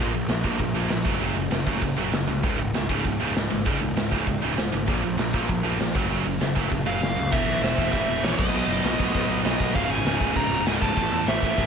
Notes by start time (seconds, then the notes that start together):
Already playing: A#2 F3
0.00 A#1 A#3
0.13 A#1 A#2 F3, open hi-hat
0.28 A#1 A#2 F3, snare, open hi-hat
0.43 A#1 A#2 F3 A#3, kick, open hi-hat
0.59 A#1 A#2 F3, kick, open hi-hat
0.74 A#1 A#2 F3 A#3, open hi-hat
0.89 A#1 A#2 F3, snare, open hi-hat
1.05 F#1 F#2 C#3 F#3, kick, open hi-hat
1.20 F#1 F#2 C#3 F#3, open hi-hat
1.35 F#1 F#2 C#3, open hi-hat
1.51 F#1 F#2 C#3, snare, open hi-hat
1.66 F#1 F#2 C#3 F#3, kick, open hi-hat
1.81 F#1 F#2 C#3, kick, open hi-hat
1.96 F#1 F#2 C#3 F#3, open hi-hat
2.12 F#1 F#2 C#3, snare, open hi-hat
2.27 C#2 F#2 C#3, open hi-hat
2.43 C#1 C#2 G#2 C#3, kick, open hi-hat
2.58 C#1 C#2 G#2, open hi-hat
2.73 C#1 C#2 G#2, snare, open hi-hat
2.88 C#1 C#2 G#2 C#3, kick, open hi-hat
3.04 C#1 C#2 G#2, kick, open hi-hat
3.19 C#1 C#2 G#2 C#3, open hi-hat
3.35 C#1 C#2 G#2, snare, open hi-hat
3.50 G#1 C#2 G#2, open hi-hat
3.65 C#1 C#2 G#2 C#3, kick, open hi-hat
3.81 C#1 C#2 G#2, open hi-hat
3.95 C#1 C#2 G#2, snare, open hi-hat
4.11 C#1 C#2 G#2 C#3, kick, open hi-hat
4.27 C#1 C#2 G#2, kick, open hi-hat
4.41 C#1 C#2 G#2 C#3, open hi-hat
4.57 C#1 C#2 G#2, snare, open hi-hat
4.72 G#1 C#2 G#2, open hi-hat
4.86 A#1 A#2 F3 A#3, kick, open hi-hat
5.02 A#1 A#2 F3, open hi-hat
5.17 A#1 A#2 F3, snare, open hi-hat
5.33 A#1 A#2 F3 A#3, kick, open hi-hat
5.49 A#1 A#2 F3, kick, open hi-hat
5.63 A#1 A#2 F3 A#3, open hi-hat
5.79 A#1 A#2 F3, snare, open hi-hat
5.93 F#1 F#2 C#3 F#3, kick, open hi-hat
6.09 F#1 F#2 C#3 F#3, open hi-hat
6.25 F#1 F#2 C#3, open hi-hat
6.40 F#1 F#2 C#3, snare, open hi-hat
6.55 F#1 F#2 C#3 F#3, kick, open hi-hat
6.70 F#1 F#2 C#3, kick, open hi-hat
6.85 F#1 F#2 C#3 F#3 F5, open hi-hat
7.01 F#1 F#2 C#3, snare, open hi-hat
7.16 C#2 F#2 C#3, open hi-hat
7.32 E1 E2 B2 E3 E5, kick, crash
7.47 B1
7.61 E1 E2 B2 E3 E5, snare, open hi-hat
7.77 E1 E2 B2 E3, kick
7.92 E1 E2 B2 E3 E5, kick, open hi-hat
8.07 E1
8.23 A#1 E2 B2 E3 C#5, snare, open hi-hat
8.38 B1 B2 F#3 B3 D#5, kick, crash
8.53 B1 B2 F#3 B3
8.68 F#1
8.84 B1 B2 F#3 B3, snare, open hi-hat
8.99 B1 B2 F#3 B3, kick
9.14 B1 B2 F#3 B3, kick, open hi-hat
9.29 B1
9.44 B1 B2 F#3 B3 D#5, snare, open hi-hat
9.59 B1 B2 F#3 B3, kick
9.74 C#1 C#2 G#2 C#3 F5, kick, open hi-hat
9.90 G#1 G#5
10.05 C#1 C#2 G#2 C#3, snare, open hi-hat
10.21 C#1 C#2 G#2 C#3, kick
10.36 C#1 C#2 G#2 C#3 A#5, kick, open hi-hat
10.50 C#1
10.66 C#1 C#2 G#2 C#3 G#5, snare, open hi-hat
10.81 C#1 C#2 G#2 C#3 A5, kick
10.97 A1 A2 E3 A3, kick, open hi-hat
11.11 E2
11.27 A1 A2 E3 A3 E5, snare, open hi-hat
11.41 A1 A2 E3 A3, kick
11.57 A1 A2 E3 A3 E5, kick, open hi-hat